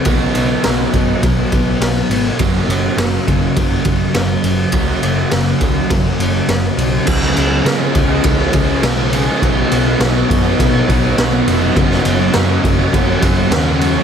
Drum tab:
CC |----------------|----------------|----------------|x---------------|
RD |x-x-x-x-x-x-x-x-|x-x-x-x-x-x-x-x-|x-x-x-x-x-x-x-x-|--x-x-x-x-x-x-x-|
SD |----o-------o---|----o-------o---|----o-------o---|-o--o-------o---|
BD |o-----o-o-o-----|o-----o-o-o-----|o-----o-o-------|o-----o-o-o-----|

CC |----------------|----------------|
RD |x-x-x-x-x-x-x-x-|x-x-x-x-x-x-x-x-|
SD |----o-------o---|-o--o-------o---|
BD |o-----o-o-o-----|o-----o-o-o-----|